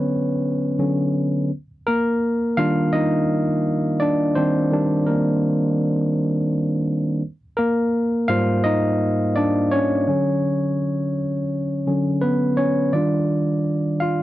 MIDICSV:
0, 0, Header, 1, 2, 480
1, 0, Start_track
1, 0, Key_signature, -3, "major"
1, 0, Tempo, 714286
1, 1004, Time_signature, 4, 2, 24, 8
1, 9560, End_track
2, 0, Start_track
2, 0, Title_t, "Tine electric piano"
2, 0, Program_c, 0, 4
2, 0, Control_c, 0, 64, 127
2, 0, Note_on_c, 0, 50, 57
2, 0, Note_on_c, 0, 54, 54
2, 0, Note_on_c, 0, 59, 57
2, 0, Note_on_c, 0, 61, 57
2, 0, Note_on_c, 0, 71, 73
2, 0, Note_on_c, 0, 73, 85
2, 498, Note_off_c, 0, 71, 0
2, 505, Note_off_c, 0, 59, 0
2, 529, Note_off_c, 0, 50, 0
2, 529, Note_on_c, 0, 50, 48
2, 530, Note_off_c, 0, 54, 0
2, 530, Note_on_c, 0, 54, 43
2, 534, Note_off_c, 0, 61, 0
2, 534, Note_on_c, 0, 61, 52
2, 743, Note_off_c, 0, 50, 0
2, 743, Note_off_c, 0, 54, 0
2, 745, Note_off_c, 0, 61, 0
2, 1014, Control_c, 0, 64, 0
2, 1017, Note_off_c, 0, 73, 0
2, 1120, Control_c, 0, 64, 127
2, 1254, Note_on_c, 0, 70, 93
2, 1263, Note_on_c, 0, 58, 67
2, 1707, Note_off_c, 0, 58, 0
2, 1729, Note_on_c, 0, 77, 103
2, 1731, Note_on_c, 0, 51, 56
2, 1735, Note_on_c, 0, 55, 52
2, 1739, Note_on_c, 0, 62, 62
2, 1740, Note_on_c, 0, 65, 74
2, 1743, Note_off_c, 0, 70, 0
2, 1950, Note_off_c, 0, 77, 0
2, 1956, Note_off_c, 0, 65, 0
2, 1967, Note_on_c, 0, 75, 95
2, 1982, Note_on_c, 0, 63, 80
2, 2059, Note_off_c, 0, 51, 0
2, 2061, Note_off_c, 0, 55, 0
2, 2064, Note_off_c, 0, 62, 0
2, 2666, Note_off_c, 0, 63, 0
2, 2687, Note_on_c, 0, 74, 95
2, 2701, Note_on_c, 0, 62, 71
2, 2707, Note_off_c, 0, 75, 0
2, 2916, Note_off_c, 0, 62, 0
2, 2925, Note_on_c, 0, 72, 87
2, 2931, Note_on_c, 0, 51, 48
2, 2932, Note_off_c, 0, 74, 0
2, 2935, Note_on_c, 0, 55, 40
2, 2938, Note_on_c, 0, 62, 55
2, 2940, Note_on_c, 0, 60, 71
2, 3144, Note_off_c, 0, 51, 0
2, 3146, Note_off_c, 0, 55, 0
2, 3148, Note_off_c, 0, 62, 0
2, 3171, Note_on_c, 0, 51, 59
2, 3175, Note_on_c, 0, 55, 53
2, 3180, Note_on_c, 0, 62, 60
2, 3385, Note_off_c, 0, 60, 0
2, 3403, Note_on_c, 0, 70, 78
2, 3419, Note_off_c, 0, 72, 0
2, 3419, Note_on_c, 0, 58, 60
2, 3860, Note_off_c, 0, 51, 0
2, 3862, Note_off_c, 0, 55, 0
2, 3865, Note_off_c, 0, 62, 0
2, 4337, Note_off_c, 0, 70, 0
2, 4345, Note_off_c, 0, 58, 0
2, 4853, Control_c, 0, 64, 0
2, 4976, Control_c, 0, 64, 127
2, 5086, Note_on_c, 0, 70, 92
2, 5098, Note_on_c, 0, 58, 74
2, 5538, Note_off_c, 0, 70, 0
2, 5544, Note_off_c, 0, 58, 0
2, 5564, Note_on_c, 0, 77, 108
2, 5568, Note_on_c, 0, 44, 55
2, 5572, Note_on_c, 0, 55, 53
2, 5573, Note_on_c, 0, 72, 63
2, 5577, Note_on_c, 0, 65, 77
2, 5672, Note_off_c, 0, 77, 0
2, 5682, Note_off_c, 0, 65, 0
2, 5804, Note_on_c, 0, 75, 101
2, 5817, Note_on_c, 0, 63, 77
2, 6264, Note_off_c, 0, 63, 0
2, 6287, Note_on_c, 0, 74, 95
2, 6298, Note_on_c, 0, 62, 82
2, 6299, Note_off_c, 0, 75, 0
2, 6514, Note_off_c, 0, 62, 0
2, 6528, Note_on_c, 0, 73, 91
2, 6533, Note_off_c, 0, 74, 0
2, 6539, Note_on_c, 0, 61, 68
2, 6739, Note_off_c, 0, 44, 0
2, 6741, Note_off_c, 0, 55, 0
2, 6742, Note_off_c, 0, 72, 0
2, 6771, Note_off_c, 0, 61, 0
2, 6772, Note_on_c, 0, 50, 54
2, 6774, Control_c, 0, 64, 0
2, 6777, Note_on_c, 0, 54, 50
2, 6779, Note_on_c, 0, 61, 55
2, 6903, Control_c, 0, 64, 127
2, 7461, Note_off_c, 0, 50, 0
2, 7463, Note_off_c, 0, 54, 0
2, 7465, Note_off_c, 0, 61, 0
2, 7974, Note_on_c, 0, 50, 46
2, 7979, Note_on_c, 0, 54, 43
2, 7980, Note_on_c, 0, 61, 48
2, 8185, Note_off_c, 0, 50, 0
2, 8188, Note_off_c, 0, 54, 0
2, 8189, Note_off_c, 0, 61, 0
2, 8208, Note_on_c, 0, 71, 77
2, 8219, Note_on_c, 0, 59, 64
2, 8419, Note_off_c, 0, 73, 0
2, 8435, Note_off_c, 0, 59, 0
2, 8447, Note_on_c, 0, 73, 76
2, 8453, Note_off_c, 0, 71, 0
2, 8460, Note_on_c, 0, 61, 60
2, 8669, Note_off_c, 0, 73, 0
2, 8676, Note_off_c, 0, 61, 0
2, 8689, Note_on_c, 0, 74, 75
2, 8691, Note_on_c, 0, 51, 47
2, 8692, Control_c, 0, 64, 0
2, 8696, Note_on_c, 0, 55, 39
2, 8701, Note_on_c, 0, 65, 52
2, 8703, Note_on_c, 0, 62, 57
2, 8811, Control_c, 0, 64, 127
2, 9387, Note_off_c, 0, 62, 0
2, 9409, Note_on_c, 0, 77, 80
2, 9414, Note_off_c, 0, 65, 0
2, 9422, Note_on_c, 0, 65, 58
2, 9428, Note_off_c, 0, 74, 0
2, 9560, Note_off_c, 0, 51, 0
2, 9560, Note_off_c, 0, 55, 0
2, 9560, Note_off_c, 0, 65, 0
2, 9560, Note_off_c, 0, 77, 0
2, 9560, End_track
0, 0, End_of_file